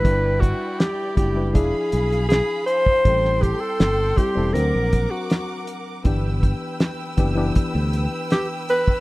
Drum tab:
HH |x-x-x-x-x-xxx-x-|x-x-x-x-x-x-x-x-|x-x-x-x-x-x-x-x-|
SD |----o-------o---|-o--o-------o---|----o-------o---|
BD |o-o---o-o------o|o-o---o---o-----|o-o---o-o------o|